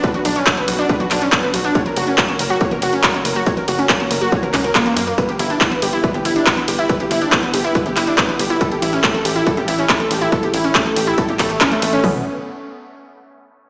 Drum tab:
RD |--x---x---x---x-|--x---x---x---x-|--x---x---x---x-|--x---x---x---x-|
HH |xxoxxxoxxxoxxxox|xxoxxxoxxxoxxxox|xxoxxxoxxxoxxxox|xxoxxxoxxxoxxxox|
CP |----x-----x-x---|----x-------x---|----x-----x-x---|----x-------x---|
FT |----------------|----------------|----------------|----------------|
BD |o---o---o---o---|o---o---o---o---|o---o---o-o-o---|o---o---o---o---|

RD |--x---x---x---x-|--x---x---x---x-|--x---x---x---x-|----------------|
HH |xxoxxxoxxxoxxxox|xxoxxxoxxxoxxxox|xxoxxxoxxxoxxxox|o---------------|
CP |----x-----x-x---|----x-------x---|----x-----x-x---|----------------|
FT |----------------|----------------|----------------|o---------------|
BD |o---o---o---o---|o---o---o---o---|o---o---o-o-o---|o---------------|